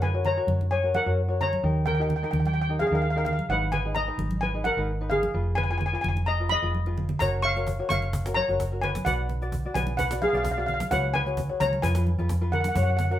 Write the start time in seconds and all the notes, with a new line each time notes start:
Already playing: F#2
0.02 B4 G#5, low conga
0.14 F#4 A#4 C#5
0.24 C#5 A#5, low conga
0.37 F#4 A#4 C#5
0.47 F#2, high conga, low conga
0.61 high conga
0.71 C#5 G#5
0.83 F#4 A#4 C#5
0.95 A#4 F#5, high conga
1.06 F#2 F#4 A#4 C#5
1.28 F#4 A#4 C#5
1.41 C#5 A#5, low conga
1.53 high conga
1.63 D#2 D#4 G4 A#4
1.86 A#4 G5, low conga
1.95 G5
1.99 D#4 G4 A#4 G5
2.09 G5, low conga
2.16 G5
2.22 D#4 G4 A#4 G5
2.31 D#2 G5, high conga, low conga
2.40 G5
2.46 G5, high conga
2.54 G5
2.62 G5
2.69 D#4 G4 A#4
2.79 G#4 F5, high conga
2.87 D#2 F5
2.92 D#4 G4 A#4 F5
3.02 F5
3.10 F5
3.15 D#4 G4 A#4 F5
3.25 F5, low conga
3.33 F5
3.39 high conga
3.49 G#1 D#4 G#4 B4 F#5
3.72 B4 G#5, low conga
3.85 D#4 G#4 B4
3.95 D#5 A#5, low conga
4.07 D#4 G#4 B4
4.18 G#1, high conga, low conga
4.31 high conga
4.41 B4 G#5
4.54 D#4 G#4 B4
4.64 A#4 F#5, high conga
4.77 G#1 D#4 G#4 B4
5.01 D#4 G#4 B4
5.10 G#4 F5, low conga
5.23 high conga
5.34 F1 F4 G#4 B4
5.55 B4 G#5, low conga
5.64 G#5
5.70 F4 G#4 B4 G#5
5.78 G#5, low conga
5.86 G#5
5.92 F4 G#4 B4 G#5
6.01 F1 G#5, high conga, low conga
6.09 G#5
6.17 high conga
6.26 D#5 A#5
6.40 F4 G#4 B4
6.49 D#5 B5, high conga
6.62 F1 F4 G#4 B4
6.74 high conga
6.86 F4 G#4 B4, high conga
6.97 low conga
7.09 low conga
7.19 F#1 F#4 A#4 C#5 A#5, cajon bass
7.42 F5 C#6, cajon slap, low conga
7.55 F#4 A#4 C#5, cajon slap
7.67 cajon bass, low conga
7.79 F#4 A#4 C#5
7.89 F#1 F5 C#6, cajon slap, high conga, low conga
8.02 cajon slap, high conga
8.13 cajon bass
8.26 F#4 A#4 C#5, cajon slap
8.34 C#5 A#5, cajon slap, high conga
8.48 F#1 F#4 A#4 C#5, cajon slap
8.60 cajon bass, cajon slap
8.72 F#4 A#4 C#5
8.82 B4 G#5, cajon slap, low conga
8.95 cajon slap, high conga
9.05 B1 F#4 B4 D5 F#5, cajon bass
9.29 cajon slap, low conga
9.41 F#4 B4 D5, cajon slap
9.52 cajon bass, low conga
9.65 F#4 B4 D5
9.74 B1 B4 G#5, cajon slap, high conga, low conga
9.87 cajon slap, high conga
9.97 B4 F#5, cajon bass
10.11 F#4 B4 D5, cajon slap
10.22 G#4 F5, high conga
10.29 F5
10.33 B1 F#4 B4 D5, cajon slap
10.37 F5
10.43 F5, cajon bass, cajon slap
10.51 F5
10.57 F#4 B4 D5 F5
10.66 F5, cajon slap, low conga
10.74 F5
10.80 cajon slap, high conga
10.91 C#2 F#4 G#4 B4 C#5 F#5, cajon bass
11.14 B4 G#5, cajon slap, low conga
11.26 F#4 G#4 C#5, cajon slap
11.37 cajon bass, low conga
11.49 F#4 G#4 C#5
11.60 C#2 C#5 A#5, cajon slap, high conga, low conga
11.73 high conga
11.82 F2 F4 G#4 B4 G#5, cajon bass
11.95 F4 G#4 B4, cajon slap
12.06 cajon slap, high conga
12.18 F2 F4 G#4 B4, cajon slap
12.29 cajon bass, cajon slap
12.41 F4 G#4 B4
12.52 A#4 F#5, cajon slap, low conga
12.61 F#5, cajon slap
12.65 F#5, high conga
12.75 F#2 F#4 A#4 C#5 F#5, cajon bass
12.83 F#5
12.90 F#5
12.97 F#5, cajon slap, low conga
13.04 F#5
13.10 F#4 A#4 C#5 F#5, cajon slap